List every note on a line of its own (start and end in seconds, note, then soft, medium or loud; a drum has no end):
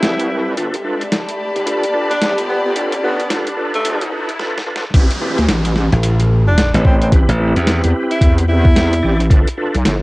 0.00 0.17 C2 loud
0.00 0.55 C4 medium
0.00 0.53 E4 loud
0.00 0.55 E4 medium
0.00 0.55 G4 medium
0.00 2.35 A4 medium
0.00 0.55 B4 medium
0.00 1.44 E5 medium
0.00 snare loud
0.00 closed hi-hat medium
0.00 riser medium
0.19 0.56 C2 loud
0.19 closed hi-hat medium
0.57 0.71 G1 loud
0.57 0.76 D4 medium
0.57 0.76 F4 medium
0.57 4.39 G4 medium
0.57 0.76 A4 medium
0.57 0.76 B4 medium
0.57 closed hi-hat medium
0.74 closed hi-hat medium
0.79 4.39 D5 medium
0.84 1.03 D4 medium
0.84 1.03 F4 medium
0.84 1.03 A4 medium
0.84 1.03 B4 medium
0.84 4.39 A5 medium
1.01 4.39 B5 medium
1.01 closed hi-hat soft
1.12 snare loud
1.12 closed hi-hat medium
1.28 closed hi-hat medium
1.56 1.65 F1 medium
1.56 closed hi-hat soft
1.66 1.85 D4 medium
1.66 1.85 F4 medium
1.66 1.85 A4 medium
1.66 1.85 B4 medium
1.66 closed hi-hat medium
1.83 closed hi-hat medium
1.94 2.12 D4 medium
1.94 2.12 F4 medium
1.94 2.12 A4 medium
1.94 2.12 B4 medium
2.10 2.34 D4 medium
2.10 closed hi-hat soft
2.21 2.35 B1 loud
2.21 snare loud
2.21 closed hi-hat medium
2.38 2.63 G1 loud
2.38 closed hi-hat medium
2.49 2.59 B3 medium
2.65 3.17 G1 loud
2.65 2.72 B3 medium
2.76 2.94 D4 medium
2.76 2.94 F4 medium
2.76 2.94 A4 medium
2.76 2.94 B4 medium
2.76 closed hi-hat medium
2.92 closed hi-hat soft
3.03 3.28 B3 medium
3.03 3.21 D4 medium
3.03 3.21 F4 medium
3.03 3.21 A4 medium
3.03 3.21 B4 loud
3.20 closed hi-hat soft
3.30 3.49 D4 medium
3.30 3.49 F4 medium
3.30 3.49 A4 medium
3.30 3.49 B4 medium
3.30 snare loud
3.30 closed hi-hat medium
3.47 closed hi-hat medium
3.57 3.76 D4 medium
3.57 3.76 F4 medium
3.57 3.76 A4 medium
3.57 3.76 B4 loud
3.74 3.83 G2 loud
3.74 4.13 A3 medium
3.74 closed hi-hat soft
3.85 4.11 G1 loud
3.85 4.03 D4 medium
3.85 4.03 F4 medium
3.85 4.03 A4 medium
3.85 4.03 B4 medium
3.85 closed hi-hat medium
4.01 closed hi-hat soft
4.12 4.31 D4 medium
4.12 4.31 F4 medium
4.12 4.31 A4 medium
4.12 4.31 B4 medium
4.29 closed hi-hat soft
4.39 4.58 D4 medium
4.39 4.58 F4 medium
4.39 4.58 A4 medium
4.39 4.58 B4 medium
4.39 snare medium
4.58 snare medium
4.66 4.85 D4 medium
4.66 4.85 F4 medium
4.66 4.85 A4 medium
4.66 4.85 B4 loud
4.76 snare loud
4.94 5.08 A1 loud
4.94 5.12 C4 medium
4.94 5.12 E4 medium
4.94 5.12 G4 medium
4.94 5.12 B4 medium
4.94 kick loud
4.94 closed hi-hat medium
4.94 crash loud
4.94 downlifter medium
5.11 closed hi-hat medium
5.21 5.40 C4 medium
5.21 5.40 E4 medium
5.21 5.40 G4 medium
5.21 5.40 B4 medium
5.38 5.47 D2 loud
5.38 closed hi-hat soft
5.49 5.90 A1 loud
5.49 snare loud
5.49 closed hi-hat medium
5.65 closed hi-hat medium
5.76 snare medium
5.92 6.72 A1 medium
5.92 snare soft
5.92 closed hi-hat soft
6.03 closed hi-hat medium
6.20 closed hi-hat medium
6.47 6.71 D4 medium
6.58 snare loud
6.58 closed hi-hat medium
6.74 7.10 A1 medium
6.74 7.00 C4 medium
6.74 7.00 E4 medium
6.74 7.00 G4 medium
6.74 7.00 B4 medium
6.74 snare medium
6.74 closed hi-hat medium
6.85 6.96 C4 medium
6.85 kick loud
7.01 7.08 C4 medium
7.01 closed hi-hat soft
7.12 7.26 A1 loud
7.12 7.31 C4 medium
7.12 7.31 E4 medium
7.12 7.31 G4 medium
7.12 7.31 B4 loud
7.12 kick loud
7.12 closed hi-hat medium
7.29 7.53 A1 loud
7.29 closed hi-hat medium
7.39 8.46 C4 medium
7.39 8.46 E4 medium
7.39 8.46 G4 medium
7.39 8.46 B4 medium
7.56 7.81 E2 loud
7.56 closed hi-hat soft
7.67 snare loud
7.67 closed hi-hat medium
7.84 7.93 E2 loud
7.84 closed hi-hat medium
8.11 8.34 E4 medium
8.11 closed hi-hat soft
8.21 9.01 E2 loud
8.21 kick loud
8.21 closed hi-hat medium
8.38 closed hi-hat medium
8.48 8.67 C4 medium
8.48 8.67 E4 medium
8.48 9.26 E4 loud
8.48 8.67 G4 medium
8.48 8.67 B4 loud
8.65 kick loud
8.76 8.94 C4 medium
8.76 8.94 E4 medium
8.76 8.94 G4 medium
8.76 8.94 B4 medium
8.76 snare loud
8.76 closed hi-hat medium
8.93 closed hi-hat medium
9.03 9.29 A1 loud
9.03 9.21 C4 medium
9.03 9.21 E4 medium
9.03 9.21 G4 medium
9.03 9.21 D5 medium
9.20 closed hi-hat soft
9.30 9.44 G1 loud
9.30 9.49 D4 medium
9.30 9.49 F4 medium
9.30 9.49 A4 medium
9.30 9.49 B4 medium
9.30 kick loud
9.30 closed hi-hat medium
9.47 closed hi-hat medium
9.57 9.76 D4 medium
9.57 9.76 F4 medium
9.57 9.76 A4 medium
9.57 9.76 B4 loud
9.74 9.83 B1 loud
9.74 closed hi-hat soft
9.85 10.02 G1 medium
9.85 snare loud
9.85 closed hi-hat medium